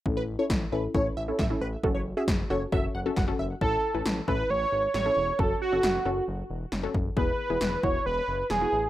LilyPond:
<<
  \new Staff \with { instrumentName = "Analog polysynth" } { \time 4/4 \key a \major \tempo 4 = 135 r16 b'16 r16 cis''16 r8 b'8 cis''8 e''16 r16 e''16 r16 b'16 r16 | r16 cis''16 r16 e''16 r8 cis''8 e''8 fis''16 r16 fis''16 r16 e''16 r16 | r1 | r1 |
r1 | }
  \new Staff \with { instrumentName = "Analog synth lead" } { \time 4/4 \key a \major r1 | r1 | a'4 r8 b'8 cis''4 cis''4 | a'8 fis'4. r2 |
b'4. cis''8 b'4 gis'4 | }
  \new Staff \with { instrumentName = "Synth pluck" } { \time 4/4 \key a \major <cis' e' a'>8 r16 <cis' e' a'>8 r16 <cis' e' a'>8 <cis' e' a'>8 r16 <cis' e' a'>8 <cis' e' a'>8 r16 | <cis' fis' a'>8 r16 <cis' fis' gis'>8 r16 <cis' fis' a'>8 <cis' fis' a'>8 r16 <cis' fis' a'>8 <cis' fis' a'>8 r16 | <cis' e' a'>8 r16 <cis' e' b'>8 r16 <cis' e' a'>4. r16 <cis' e' a'>8 r16 | <cis' fis' a'>8 r16 <cis' fis' a'>8 r16 <cis' fis' a'>4. r16 <cis' fis' a'>8 r16 |
<b e' gis'>8 r16 <b e' gis'>8 r16 <b e' fis'>4. r16 <b e' fis'>8 r16 | }
  \new Staff \with { instrumentName = "Analog synth bass" } { \clef bass \time 4/4 \key a \major a,,4 a,,8 a,,8 a,,8 a,,8 a,,8 a,,8 | fis,,4 fis,,8 fis,,8 fis,,8 fis,,8 fis,,8 fis,,8 | a,,8 r16 a,,16 a,,8 a,,8 a,,8 gis,,8 a,,8 e,,8 | fis,,8 r16 fis,,16 fis,,8 fis,,8 fis,,8 e,,8 fis,,8 fis,,8 |
e,,8 r16 e,,16 e,,8 e,,8 e,,8 fis,,8 e,,8 a,,8 | }
  \new DrumStaff \with { instrumentName = "Drums" } \drummode { \time 4/4 bd4 <bd sn>4 bd4 <bd sn>4 | bd4 <bd sn>4 bd4 <bd sn>4 | bd4 sn8 bd8 r4 sn4 | bd4 sn4 r4 sn8 bd8 |
bd4 sn8 bd8 r4 sn4 | }
>>